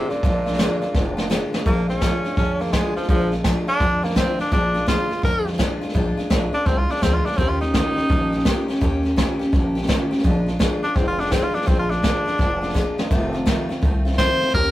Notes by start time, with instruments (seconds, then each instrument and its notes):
Already playing: steel-string acoustic guitar A#2 F3 G#3 D4, tenor saxophone C3
0.10 tenor saxophone A#2, steel-string acoustic guitar G#3 D4 F4, muted upright bass stroke, snare
0.23 upright bass A#1, steel-string acoustic guitar A#2 F3 G#3 D4 F4, kick, snare
0.46 steel-string acoustic guitar G#3 D4 F4, snare
0.53 snare
0.58 steel-string acoustic guitar A#2 F3 G#3 D4 F4, snare, hi-hat pedal
0.82 steel-string acoustic guitar G#3 D4 F4, muted upright bass stroke, snare
0.94 upright bass F1, steel-string acoustic guitar F3 G#3 D4 F4, kick, snare
1.17 steel-string acoustic guitar G#3 D4 F4, snare
1.30 steel-string acoustic guitar A#2 F3 G#3 D4 F4, snare, hi-hat pedal
1.53 steel-string acoustic guitar G#3 D4 F4, muted upright bass stroke, snare
1.66 upright bass A#1, steel-string acoustic guitar A#2 F3 G#3 D4 F4, tenor saxophone A#3, kick, snare
1.88 steel-string acoustic guitar G#3 D4 F4, tenor saxophone C#4, snare
2.01 steel-string acoustic guitar A#2 F3 G#3 D4 F4, kick, snare, hi-hat pedal
2.24 steel-string acoustic guitar G#3 D4 F4, muted upright bass stroke, snare
2.36 upright bass F2, steel-string acoustic guitar F3 G#3 D4 F4, tenor saxophone C#4, kick, snare
2.60 steel-string acoustic guitar G#3 D4 F4, tenor saxophone A#3, snare
2.67 snare
2.73 steel-string acoustic guitar A#2 F3 G#3 D4 F4, tenor saxophone G#3, kick, snare, hi-hat pedal
2.96 tenor saxophone F3, steel-string acoustic guitar G#3 D4 F4, muted upright bass stroke, snare
3.03 snare
3.08 upright bass A#1, steel-string acoustic guitar A#2 F3 G#3 D4 F4, tenor saxophone F3, kick, snare
3.31 steel-string acoustic guitar D4 F4, snare
3.36 steel-string acoustic guitar G#3
3.44 steel-string acoustic guitar A#2 F3 G#3 D4 F4, kick, snare, hi-hat pedal
3.67 tenor saxophone D4, steel-string acoustic guitar D4 F4, muted upright bass stroke, snare
3.80 upright bass F2, steel-string acoustic guitar F3 G#3 D4 F4, kick, snare
4.02 steel-string acoustic guitar G#3 D4 F4, tenor saxophone A#3, snare
4.10 snare
4.15 steel-string acoustic guitar A#2 F3 G#3 D4 F4, tenor saxophone C4, kick, snare, hi-hat pedal
4.39 steel-string acoustic guitar G#3 D4 F4, tenor saxophone D4, muted upright bass stroke, snare
4.46 snare
4.51 upright bass A#1, steel-string acoustic guitar A#2 F3 G#3 D4 F4, tenor saxophone D4, kick, snare
4.74 steel-string acoustic guitar G#3 D4 F4, snare
4.86 steel-string acoustic guitar A#2 F3 G#3 D4 F4, tenor saxophone F4, kick, snare, hi-hat pedal
5.09 steel-string acoustic guitar G#3 D4 F4, muted upright bass stroke, snare
5.22 upright bass F2, steel-string acoustic guitar F3 G#3 D4 F4, tenor saxophone A#4, kick, snare
5.45 steel-string acoustic guitar G#3 D4 F4, snare
5.53 snare
5.58 steel-string acoustic guitar A#2 F3 G#3 D4 F4, kick, snare, hi-hat pedal
5.81 steel-string acoustic guitar G#3 D4 F4, muted upright bass stroke, snare
5.89 snare
5.94 upright bass A#1, steel-string acoustic guitar A#2 F3 G#3 D4 F4, kick, snare
6.17 steel-string acoustic guitar G#3 D4 F4, muted upright bass stroke, snare
6.30 upright bass A#1, steel-string acoustic guitar A#2 F3 G#3 D4 F4, kick, snare, hi-hat pedal
6.53 steel-string acoustic guitar G#3 D4 F4, tenor saxophone D4, snare
6.66 upright bass C2, steel-string acoustic guitar F3 G#3 D4 F4, tenor saxophone C4, kick, snare
6.78 tenor saxophone F4
6.89 steel-string acoustic guitar G#3 D4 F4, tenor saxophone D4, snare
6.96 snare
7.02 upright bass D2, steel-string acoustic guitar A#2 F3 G#3 D4 F4, tenor saxophone C4, kick, snare, hi-hat pedal
7.14 tenor saxophone F4
7.25 steel-string acoustic guitar G#3 D4 F4, tenor saxophone D4, snare
7.32 snare
7.37 upright bass D#2, steel-string acoustic guitar D#3 A#3 C#4 G4, tenor saxophone C4, kick, snare
7.49 tenor saxophone F4
7.61 steel-string acoustic guitar A#3 C#4 G4, tenor saxophone D#4, snare
7.74 steel-string acoustic guitar D#3 A#3 C#4 G4, kick, snare, hi-hat pedal
7.96 steel-string acoustic guitar A#3 C#4 G4, muted upright bass stroke, snare
8.09 upright bass A#1, steel-string acoustic guitar D#3 A#3 C#4 G4, kick, snare
8.32 steel-string acoustic guitar A#3 C#4 G4, snare
8.39 snare
8.45 steel-string acoustic guitar D#3 A#3 C#4 G4, kick, snare, hi-hat pedal
8.68 steel-string acoustic guitar A#3 C#4 G4, muted upright bass stroke, snare
8.76 snare
8.81 upright bass D#2, steel-string acoustic guitar D#3 A#3 C#4 G4, kick, snare
9.03 steel-string acoustic guitar A#3 C#4 G4, snare
9.16 steel-string acoustic guitar D#3 A#3 C#4 G4, kick, snare, hi-hat pedal
9.39 steel-string acoustic guitar A#3 C#4 G4, muted upright bass stroke, snare
9.52 upright bass A#1, steel-string acoustic guitar D#3 A#3 C#4 G4, kick, snare
9.75 steel-string acoustic guitar A#3 C#4 G4, snare
9.83 snare
9.88 steel-string acoustic guitar D#3 A#3 C#4 G4, kick, snare, hi-hat pedal
10.11 steel-string acoustic guitar A#3 C#4 G4, muted upright bass stroke, snare
10.18 snare
10.24 upright bass A#1, steel-string acoustic guitar A#2 F3 G#3 D4 F4, kick, snare
10.46 steel-string acoustic guitar G#3 D4 F4, snare
10.59 steel-string acoustic guitar A#2 F3 G#3 D4 F4, kick, snare, hi-hat pedal
10.83 steel-string acoustic guitar G#3 D4 F4, tenor saxophone D4, muted upright bass stroke, snare
10.95 upright bass F1, steel-string acoustic guitar F3 G#3 D4 F4, tenor saxophone C4, kick, snare
11.08 tenor saxophone F4
11.18 steel-string acoustic guitar G#3 D4 F4, tenor saxophone D4, snare
11.26 snare
11.31 steel-string acoustic guitar A#2 F3 G#3 D4 F4, tenor saxophone C4, kick, snare, hi-hat pedal
11.44 tenor saxophone F4
11.54 steel-string acoustic guitar G#3 D4 F4, tenor saxophone D4, muted upright bass stroke, snare
11.61 snare
11.66 upright bass A#1, steel-string acoustic guitar A#2 F3 G#3 D4 F4, tenor saxophone C4, kick, snare
11.79 tenor saxophone F4
11.89 steel-string acoustic guitar G#3 D4 F4, tenor saxophone D4, snare
12.03 steel-string acoustic guitar A#2 F3 G#3 D4 F4, kick, snare, hi-hat pedal
12.26 steel-string acoustic guitar G#3 D4 F4, muted upright bass stroke, snare
12.38 upright bass F1, steel-string acoustic guitar F3 G#3 D4 F4, kick, snare
12.62 steel-string acoustic guitar G#3 D4 F4, snare
12.69 snare
12.74 steel-string acoustic guitar A#2 F3 G#3 D4 F4, kick, snare, hi-hat pedal
12.98 steel-string acoustic guitar G#3 D4 F4, muted upright bass stroke, snare
13.11 upright bass F1, steel-string acoustic guitar F2 C3 D#3 A3 C4 F4, kick, snare
13.33 steel-string acoustic guitar D#3 A3 C4 F4, snare
13.46 steel-string acoustic guitar F2 C3 D#3 A3 C4 F4, kick, snare, hi-hat pedal
13.69 steel-string acoustic guitar D#3 A3 C4 F4, muted upright bass stroke, snare
13.82 upright bass C2, steel-string acoustic guitar D#3 A3 C4 F4, kick, snare
14.05 steel-string acoustic guitar D#3 A3 C4 F4, snare
14.12 snare
14.18 steel-string acoustic guitar F2 C3 D#3 A3 C4 F4, tenor saxophone C5, kick, snare, hi-hat pedal
14.41 steel-string acoustic guitar D#3 A3 C4 F4, muted upright bass stroke, snare
14.48 snare
14.53 upright bass D#2, steel-string acoustic guitar D#3 A#3 C#4 G4, tenor saxophone A#4, kick, snare